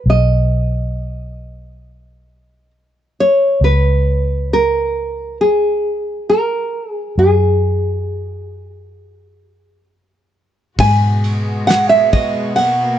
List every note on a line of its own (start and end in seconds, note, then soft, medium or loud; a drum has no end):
0.06 3.57 B1 medium
0.10 2.71 D#5 medium
3.20 3.64 C#5 medium
3.61 7.14 C#2 medium
3.61 4.53 B4 medium
4.53 5.37 A#4 medium
5.41 6.29 G#4 medium
6.29 6.90 A#4 medium
6.90 7.14 G#4 medium
7.18 10.74 F#2 medium
7.18 9.84 G#4 medium
10.78 12.99 G#2 medium
10.78 12.99 B2 medium
10.78 12.55 G#3 medium
10.78 12.99 F#4 medium
10.78 11.67 G#5 loud
10.78 kick medium
10.78 crash medium
11.24 ride soft
11.67 11.89 F#5 medium
11.67 snare medium
11.67 ride medium
11.89 12.12 E5 medium
12.13 12.55 D#5 loud
12.13 kick medium
12.13 ride medium
12.56 12.99 A#3 medium
12.56 12.99 F#5 medium
12.56 ride medium